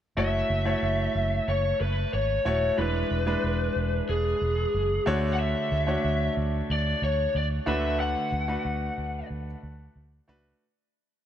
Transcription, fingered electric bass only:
0.17 0.41 F#1 medium
0.50 0.73 F#1 medium
0.83 1.06 F#1 medium
1.15 1.39 F#1 medium
1.48 1.71 F#1 medium
1.81 2.04 F#1 medium
2.13 2.37 G#1 medium
2.46 2.69 D#1 medium
2.78 3.02 E1 medium
3.11 3.35 E1 medium
3.44 3.67 E1 medium
3.76 4.00 E1 medium
4.09 4.33 E1 medium
4.41 4.65 E1 medium
4.74 4.98 F#1 medium
5.07 5.54 D2 medium
5.72 5.95 D2 medium
6.04 6.28 D2 medium
6.37 6.61 D2 loud
6.70 6.93 D2 medium
7.02 7.26 D2 medium
7.35 7.58 D2 medium
7.67 8.14 D2 loud
8.32 8.56 D2 loud
8.65 8.89 D2 medium
8.98 9.21 D2 medium
9.30 9.54 D2 loud
9.63 9.87 D2 medium
9.96 10.19 D2 medium
10.29 10.52 C#2 medium

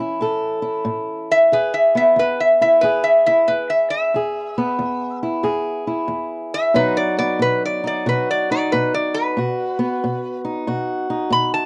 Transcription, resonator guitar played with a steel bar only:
1.32 1.52 E5 loud
1.53 1.73 B4 medium
1.74 1.95 E5 medium
1.97 2.17 E5 medium
2.19 2.39 B4 medium
2.40 2.61 E5 medium
2.62 2.82 E5 medium
2.81 3.03 B4 medium
3.04 3.25 E5 medium
3.26 3.47 E5 loud
3.48 3.69 B4 medium
3.70 3.89 E5 medium
3.90 5.18 E5 medium
6.54 6.75 E5 loud
6.76 6.96 B4 medium
6.97 7.17 D5 medium
7.19 7.39 D5 loud
7.42 7.62 B4 medium
7.66 7.85 D5 medium
7.87 8.06 D5 medium
8.09 8.28 B4 medium
8.31 8.50 D5 medium
8.52 8.71 D5 loud
8.72 8.92 B4 medium
8.94 9.14 D5 loud
9.14 10.41 B4 medium
11.32 11.53 B5 medium
11.54 11.66 A5 medium

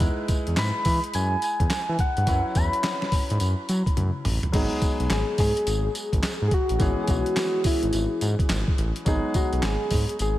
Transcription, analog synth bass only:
0.48 0.55 E2 medium
0.58 0.71 G#2 medium
0.86 0.99 E3 loud
1.15 1.36 F#2 loud
1.60 1.68 E2 medium
1.89 1.97 E3 loud
2.17 2.25 G2 medium
2.27 2.41 F#2 loud
2.56 2.69 E2 medium
3.12 3.19 G#2 soft
3.31 3.38 G#2 loud
3.41 3.54 F#2 medium
3.69 3.83 F#3 loud
3.97 4.11 F#2 loud
4.25 4.39 A1 loud
4.54 4.67 G#1 loud
5.00 5.08 B1 medium
5.10 5.24 G#1 medium
5.39 5.52 G#2 loud
5.67 5.88 G#1 medium
6.13 6.21 G#1 medium
6.42 6.49 G#2 loud
6.70 6.78 A1 medium
6.80 6.94 G#1 loud
7.08 7.22 B1 loud
7.65 7.72 G#1 medium
7.83 7.91 G#1 medium
7.94 8.07 G#1 loud
8.22 8.35 G#2 loud
8.50 8.64 G#1 medium
8.78 8.92 A1 medium
9.06 9.20 G#1 loud
9.53 9.61 B1 medium
9.63 9.77 G#1 medium
9.91 10.05 G#2 loud
10.20 10.38 G#1 medium

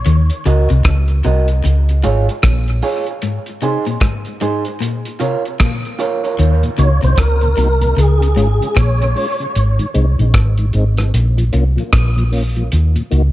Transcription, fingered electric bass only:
0.07 0.29 D#2 loud
0.46 0.69 C#2 loud
0.71 0.85 C2 loud
0.85 1.22 C#2 medium
1.26 1.62 C2 loud
1.65 2.02 C#2 loud
2.05 2.27 G#1 medium
2.44 2.81 A#1 medium
6.39 6.62 D#2 medium
6.79 7.01 C#2 medium
7.03 7.17 C2 medium
7.18 7.55 C#2 medium
7.58 7.94 C2 medium
7.98 8.34 C#2 medium
8.37 8.59 G#1 medium
8.77 9.13 A#1 medium
9.56 9.78 G#1 loud
9.96 10.18 C2 medium
10.20 10.33 A#1 medium
10.34 10.71 G#1 medium
10.75 11.11 G#1 medium
11.14 11.50 A#1 medium
11.54 11.76 C2 medium
11.93 12.68 A#1 medium
12.73 12.95 D#2 medium
13.12 13.32 C#2 loud

